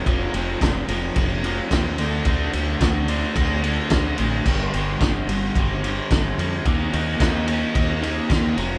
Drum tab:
CC |--------|--------|x-------|--------|
RD |xxxxxxxx|xxxxxxxx|-xxxxxxx|xxxxxxxx|
SD |--o---o-|--o---o-|--o---o-|--o---o-|
BD |o-o-o-o-|o-o-o-o-|o-o-o-o-|o-o-o-o-|